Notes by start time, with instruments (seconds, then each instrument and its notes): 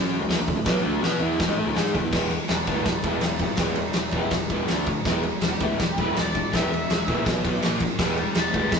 Already playing: picked electric bass F#2, overdriven electric guitar F#3 C#4 F#4
0.19 picked electric bass D2, overdriven electric guitar D3 A3
0.27 picked electric bass E2, overdriven electric guitar E3 B3, snare, open hi-hat
0.38 picked electric bass D2, overdriven electric guitar D3 A3
0.47 picked electric bass D2, overdriven electric guitar D3 A3, kick
0.56 picked electric bass D2, overdriven electric guitar D3 A3
0.65 picked electric bass B1, overdriven electric guitar B2 F#3 B3, kick, snare, open hi-hat
0.81 picked electric bass D2, overdriven electric guitar D3 A3 D4
1.02 picked electric bass B2, overdriven electric guitar B3 F#4 B4, snare, open hi-hat
1.20 picked electric bass E2, overdriven electric guitar E3 B3 E4
1.39 picked electric bass B1, overdriven electric guitar B2 F#3, kick, snare, open hi-hat
1.47 picked electric bass G#2, overdriven electric guitar G#3 D#4
1.56 picked electric bass A2, overdriven electric guitar A3 E4
1.65 picked electric bass D2, overdriven electric guitar D3 A3
1.75 picked electric bass G#2, overdriven electric guitar G#3 D#4 G#4, snare, open hi-hat
1.94 picked electric bass D2, overdriven electric guitar D3 A3, kick
2.03 picked electric bass E2, overdriven electric guitar E3 B3
2.12 picked electric bass E1, overdriven electric guitar E3 G#3 B3, kick, snare, crash
2.31 overdriven electric guitar E3 G#3, ride
2.48 picked electric bass E1, overdriven electric guitar E3 G#3, lead electric guitar G4 B4, snare, ride
2.67 picked electric bass D2, overdriven electric guitar E3 G#3 B3, lead electric guitar G4 B4, kick, ride
2.85 picked electric bass E1, overdriven electric guitar E3 G#3, lead electric guitar G4 B4, kick, snare, ride
3.03 picked electric bass E1, overdriven electric guitar E3 G#3 B3, lead electric guitar D4 G4, kick, ride
3.21 picked electric bass E1, overdriven electric guitar E3 G#3, lead electric guitar D4, snare, ride
3.25 lead electric guitar G4
3.39 overdriven electric guitar E3 G#3, lead electric guitar D4 G4, kick, ride
3.57 picked electric bass E1, overdriven electric guitar E3 G#3 B3, kick, snare, ride
3.61 lead electric guitar B3 E4
3.75 picked electric bass E1, overdriven electric guitar E3 G#3, ride
3.80 lead electric guitar B3 E4
3.93 picked electric bass E1, overdriven electric guitar E3 G#3, snare, ride
3.99 lead electric guitar B3 E4
4.11 picked electric bass E1, overdriven electric guitar E3 G#3, kick, ride
4.15 overdriven electric guitar B3, lead electric guitar E4
4.31 picked electric bass E1, overdriven electric guitar E3 G#3, kick, snare, ride
4.50 picked electric bass E1, overdriven electric guitar E3 G#3 B3, kick, ride
4.68 picked electric bass D2, overdriven electric guitar D3 A3 D4, snare, ride
4.86 overdriven electric guitar D3 A3, kick, ride
5.05 picked electric bass E1, overdriven electric guitar E3 G#3 B3, kick, snare, ride
5.23 overdriven electric guitar E3 G#3, ride
5.41 picked electric bass E1, overdriven electric guitar E3 G#3, lead electric guitar G4, snare, ride
5.60 picked electric bass D2, overdriven electric guitar E3 G#3 B3, lead electric guitar E4, kick, ride
5.80 picked electric bass E1, overdriven electric guitar E3 G#3, lead electric guitar G4, kick, snare, ride
5.98 picked electric bass E1, overdriven electric guitar E3 G#3 B3, lead electric guitar B4, kick, ride
6.16 picked electric bass E1, overdriven electric guitar E3 G#3, lead electric guitar D5, snare, ride
6.34 overdriven electric guitar E3 G#3, kick, ride
6.52 picked electric bass E1, overdriven electric guitar E3 G#3 B3, lead electric guitar E5, kick, snare, ride
6.70 picked electric bass E1, overdriven electric guitar E3 G#3, ride
6.90 picked electric bass E1, overdriven electric guitar E3 G#3, snare, ride
7.08 picked electric bass A#1, overdriven electric guitar E3 G#3 B3, kick, ride
7.26 picked electric bass B1, overdriven electric guitar B2 F#3 B3, kick, snare, ride
7.45 picked electric bass B1, overdriven electric guitar B2 F#3 B3, kick, ride
7.62 picked electric bass A#1, overdriven electric guitar A#2 F3 A#3, snare, ride
7.80 overdriven electric guitar A#2 F3, kick, ride
7.98 picked electric bass E1, overdriven electric guitar E3 G#3 B3, lead electric guitar D5 G5, kick, snare, crash
8.17 overdriven electric guitar E3 G#3, lead electric guitar D5 G5, ride
8.35 picked electric bass E1, overdriven electric guitar E3 G#3, lead electric guitar G5 B5, snare, ride
8.53 picked electric bass D2, overdriven electric guitar E3 G#3 B3, lead electric guitar G5 B5, kick, ride
8.72 picked electric bass E1, overdriven electric guitar E3 G#3, lead electric guitar B5, kick, snare, ride
8.76 lead electric guitar D6